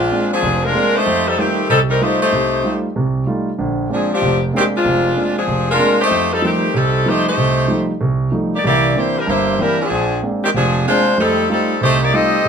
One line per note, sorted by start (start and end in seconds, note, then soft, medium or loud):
0.00 0.29 G#3 medium
0.00 0.29 C4 medium
0.00 0.29 D4 medium
0.00 0.29 F4 medium
0.11 0.33 G#3 soft
0.11 0.33 A#3 soft
0.11 0.33 C4 soft
0.11 0.33 D4 soft
0.33 0.62 F3 medium
0.33 0.62 C4 medium
0.33 0.62 D4 medium
0.33 0.62 G#4 loud
0.43 0.70 F1 medium
0.65 0.96 G#3 medium
0.65 0.96 D4 medium
0.65 0.96 F4 medium
0.65 0.96 A#4 loud
0.75 0.96 G#3 soft
0.75 0.96 A#3 soft
0.75 0.96 C4 soft
0.75 0.96 D4 medium
0.96 1.27 A3 medium
0.96 1.27 D#4 medium
0.96 1.27 G4 medium
0.96 1.27 C5 loud
1.06 1.33 F2 medium
1.28 1.39 G3 medium
1.28 1.38 C4 medium
1.28 1.39 D#4 medium
1.28 1.39 A4 medium
1.37 1.70 D#3 medium
1.37 1.59 G3 soft
1.37 1.59 A3 soft
1.37 1.70 A3 medium
1.37 1.69 C4 medium
1.37 1.59 D#4 soft
1.37 1.59 F4 soft
1.37 1.70 G4 medium
1.70 1.97 C2 medium
1.70 1.79 G3 medium
1.70 1.79 C4 medium
1.70 1.79 D#4 medium
1.70 1.79 A4 loud
1.90 2.01 G3 medium
1.90 2.01 C4 medium
1.90 2.01 D#4 medium
1.90 2.01 A#4 medium
2.01 2.22 G3 medium
2.01 2.22 A3 soft
2.01 2.21 A3 medium
2.01 2.22 D#4 soft
2.01 2.21 D#4 medium
2.01 2.22 F4 medium
2.01 2.21 G4 medium
2.01 2.21 C5 loud
2.22 2.80 A3 medium
2.22 2.80 D#4 medium
2.22 2.81 G4 medium
2.22 2.80 C5 medium
2.33 2.60 C2 medium
2.33 2.60 C3 medium
2.64 2.85 G3 soft
2.64 2.85 A3 soft
2.64 2.85 D#4 soft
2.64 2.85 F4 soft
2.96 3.23 C2 medium
2.96 3.23 C3 medium
3.26 3.48 G3 soft
3.26 3.48 A3 soft
3.26 3.48 D#4 soft
3.26 3.48 F4 medium
3.58 3.86 A#1 medium
3.58 3.86 D3 medium
3.89 4.10 F3 medium
3.89 4.11 G#3 soft
3.89 4.11 A#3 soft
3.89 4.11 C4 soft
3.89 4.10 C4 medium
3.89 4.11 D4 medium
3.89 4.10 D4 medium
3.89 4.10 G#4 medium
4.13 4.41 F3 medium
4.13 4.41 C4 medium
4.13 4.41 D4 medium
4.13 4.41 G4 medium
4.22 4.49 F1 medium
4.53 4.65 D#3 medium
4.53 4.74 G#3 soft
4.53 4.64 G#3 medium
4.53 4.74 A#3 soft
4.53 4.74 C4 soft
4.53 4.65 C4 medium
4.53 4.74 D4 medium
4.53 4.64 G4 medium
4.76 5.34 G#3 medium
4.76 5.34 C4 medium
4.76 5.34 D4 medium
4.76 5.34 F4 medium
4.85 5.12 F1 medium
4.85 5.12 F2 medium
5.16 5.37 G#3 soft
5.16 5.37 A#3 soft
5.16 5.37 C4 soft
5.16 5.37 D4 soft
5.39 5.69 F3 medium
5.39 5.69 C4 medium
5.39 5.69 D4 medium
5.39 5.69 G#4 loud
5.48 5.75 F1 medium
5.71 5.99 G#3 medium
5.71 5.99 D4 medium
5.71 5.99 F4 medium
5.71 5.99 A#4 loud
5.79 6.00 G#3 soft
5.79 6.00 A#3 soft
5.79 6.00 C4 soft
5.79 6.00 D4 medium
6.01 6.30 A3 medium
6.01 6.30 D#4 medium
6.01 6.30 G4 medium
6.01 6.30 C5 medium
6.11 6.38 F2 medium
6.32 6.43 G3 medium
6.32 6.43 C4 medium
6.32 6.43 D#4 medium
6.32 6.43 A4 medium
6.42 6.73 D#3 medium
6.42 6.63 F3 soft
6.42 6.63 G3 soft
6.42 6.64 A3 soft
6.42 6.73 A3 medium
6.42 6.73 C4 medium
6.42 6.64 D#4 soft
6.42 6.73 G4 medium
6.74 7.01 C2 medium
6.74 7.07 G3 medium
6.74 7.07 C4 medium
6.74 7.07 D#4 medium
6.74 7.07 A4 loud
7.06 7.27 F3 soft
7.06 7.27 G3 soft
7.06 7.27 A3 soft
7.06 7.27 A3 medium
7.06 7.27 D#4 medium
7.06 7.27 G4 medium
7.06 7.27 C5 loud
7.28 7.86 A3 medium
7.28 7.86 D#4 medium
7.28 7.86 G4 medium
7.28 7.86 C5 medium
7.37 7.64 C2 medium
7.68 7.90 F3 soft
7.68 7.89 G3 soft
7.68 7.90 A3 soft
7.68 7.90 D#4 medium
8.01 8.28 C2 medium
8.32 8.53 F3 soft
8.32 8.53 G3 soft
8.32 8.53 A3 soft
8.32 8.53 D#4 medium
8.56 8.65 A#3 medium
8.56 8.65 D#4 medium
8.56 8.65 G4 medium
8.56 8.65 D5 medium
8.64 8.91 C2 medium
8.64 8.91 E3 medium
8.64 8.95 A#3 medium
8.64 8.95 E4 medium
8.64 8.95 G4 medium
8.64 8.95 D5 medium
8.96 9.17 E3 soft
8.96 9.17 A#3 soft
8.96 9.16 A#3 medium
8.96 9.17 C4 soft
8.96 9.17 D4 soft
8.96 9.17 E4 medium
8.96 9.16 G4 medium
8.96 9.17 C5 medium
9.18 9.28 G3 medium
9.18 9.29 D4 medium
9.18 9.28 E4 medium
9.18 9.28 A#4 medium
9.27 9.54 G1 medium
9.27 9.54 G2 medium
9.27 9.58 A#3 medium
9.27 9.58 E4 medium
9.27 9.58 G4 medium
9.27 9.58 C5 medium
9.59 9.80 E3 soft
9.59 9.80 G3 medium
9.59 9.80 A#3 soft
9.59 9.80 C4 soft
9.59 9.80 D4 soft
9.59 9.80 D4 medium
9.59 9.80 E4 medium
9.59 9.80 A#4 medium
9.82 10.21 F3 medium
9.82 10.21 C4 medium
9.82 10.21 D4 medium
9.82 10.21 G#4 medium
9.90 10.18 A#1 medium
10.23 10.44 G#3 soft
10.23 10.44 A#3 soft
10.23 10.44 C4 soft
10.23 10.44 D4 soft
10.44 10.49 D#3 medium
10.44 10.49 G#3 medium
10.44 10.49 C4 medium
10.44 10.49 G4 medium
10.54 10.82 F1 medium
10.54 10.84 F3 medium
10.54 10.84 C4 medium
10.54 10.85 D4 medium
10.54 10.84 G#4 medium
10.86 11.07 G#3 soft
10.86 11.17 G#3 medium
10.86 11.07 A#3 soft
10.86 11.07 C4 soft
10.86 11.08 D4 medium
10.86 11.17 D4 medium
10.86 11.17 F4 medium
10.86 11.17 C5 medium
11.18 11.45 F2 medium
11.18 11.51 G3 medium
11.18 11.45 A3 medium
11.18 11.51 C4 medium
11.18 11.51 D#4 medium
11.18 11.50 A4 loud
11.49 11.70 G3 soft
11.49 11.80 G3 medium
11.49 11.71 A3 soft
11.49 11.80 C4 medium
11.49 11.71 D#4 soft
11.49 11.80 D#4 medium
11.49 11.71 F4 soft
11.49 11.80 A4 medium
11.81 12.08 C2 medium
11.81 12.01 A3 medium
11.81 12.01 D#4 medium
11.81 12.01 G4 medium
11.81 12.01 C5 loud
12.03 12.14 A#3 medium
12.03 12.14 D#4 medium
12.03 12.13 G4 medium
12.03 12.14 D5 loud
12.13 12.34 G3 medium
12.13 12.34 A3 soft
12.13 12.48 C4 medium
12.13 12.34 D#4 soft
12.13 12.35 F4 medium
12.13 12.48 G4 medium
12.13 12.48 A4 medium
12.13 12.48 D#5 loud
12.45 12.48 C2 medium